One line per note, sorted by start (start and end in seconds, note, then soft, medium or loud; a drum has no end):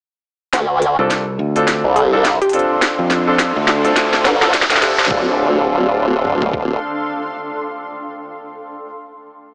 0.53 0.96 D2 loud
0.53 5.09 D4 medium
0.53 kick loud
0.53 snare soft
0.53 closed hi-hat medium
0.53 riser medium
0.82 5.11 C6 medium
0.82 closed hi-hat medium
0.99 1.37 C2 medium
0.99 1.21 C4 medium
0.99 1.21 D4 medium
0.99 1.21 F4 medium
0.99 1.21 A4 medium
1.10 kick medium
1.10 snare soft
1.10 closed hi-hat medium
1.20 5.10 A4 medium
1.39 1.82 D2 medium
1.56 2.09 C4 medium
1.56 2.09 D4 medium
1.56 2.09 F4 medium
1.56 2.09 A4 medium
1.56 closed hi-hat medium
1.68 kick medium
1.68 snare medium
1.68 closed hi-hat medium
1.84 2.39 C2 medium
1.93 2.13 A4 medium
1.93 5.10 F5 medium
1.93 closed hi-hat medium
2.13 2.25 C4 medium
2.13 2.25 D4 medium
2.13 2.25 F4 medium
2.13 2.25 A4 loud
2.25 kick medium
2.25 snare medium
2.25 closed hi-hat medium
2.42 2.54 G4 medium
2.42 closed hi-hat medium
2.49 closed hi-hat soft
2.53 3.23 C4 medium
2.53 3.23 D4 medium
2.53 3.23 F4 medium
2.53 3.23 A4 medium
2.53 closed hi-hat medium
2.59 closed hi-hat soft
2.82 kick loud
2.82 snare medium
2.82 closed hi-hat medium
2.99 3.53 F2 medium
3.10 snare medium
3.10 closed hi-hat medium
3.27 3.50 C4 medium
3.27 3.50 D4 medium
3.27 3.50 F4 medium
3.27 3.50 A4 medium
3.39 kick medium
3.39 snare medium
3.39 closed hi-hat medium
3.56 3.95 D2 loud
3.68 3.85 A4 medium
3.68 snare medium
3.84 4.38 C4 medium
3.84 4.38 D4 medium
3.84 4.38 F4 medium
3.84 4.38 A4 loud
3.84 closed hi-hat medium
3.96 4.23 D2 loud
3.96 kick loud
3.96 snare medium
3.96 closed hi-hat medium
4.13 snare medium
4.25 4.52 G1 medium
4.25 4.36 A4 medium
4.25 snare loud
4.25 closed hi-hat medium
4.41 4.54 C4 loud
4.41 4.54 D4 medium
4.41 4.54 F4 medium
4.41 4.49 A4 medium
4.41 4.54 A4 loud
4.41 snare medium
4.54 4.68 D2 loud
4.54 kick loud
4.54 snare loud
4.54 closed hi-hat medium
4.62 snare medium
4.70 4.96 D2 loud
4.70 snare medium
4.70 closed hi-hat medium
4.76 snare medium
4.82 5.09 C4 medium
4.82 5.09 D4 medium
4.82 5.09 F4 medium
4.82 5.11 G4 medium
4.82 5.09 A4 medium
4.82 snare loud
4.82 closed hi-hat medium
4.99 5.09 C2 loud
4.99 snare medium
5.05 snare loud
5.10 6.78 D1 loud
5.10 8.85 C4 medium
5.10 8.85 D4 medium
5.10 8.15 D4 medium
5.10 8.85 F4 medium
5.10 8.85 A4 medium
5.10 kick loud
5.21 8.15 A4 medium
5.30 8.15 F5 medium
5.37 8.15 C6 medium
6.25 mid tom medium
6.42 floor tom medium
6.54 kick medium